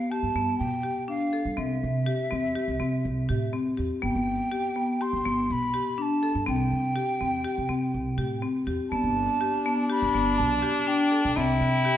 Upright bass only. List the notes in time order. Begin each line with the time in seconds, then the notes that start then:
0.23 G2
0.35 G2
0.61 B2
1.45 G3
1.58 C2
1.83 C3
2.32 E2
2.68 C2
2.80 C3
3.05 C2
3.30 A2
3.79 E2
4.03 G1
4.15 G1
5.13 G1
5.26 G1
5.50 B1
6.35 G2
6.48 C2
6.72 C3
7.21 E2
7.58 C2
7.69 C3
7.94 C2
8.18 A2
8.67 E2
8.92 G1
9.03 G1
10.02 G1
10.14 G1
10.40 B1
11.25 B1
11.37 C2
11.61 C3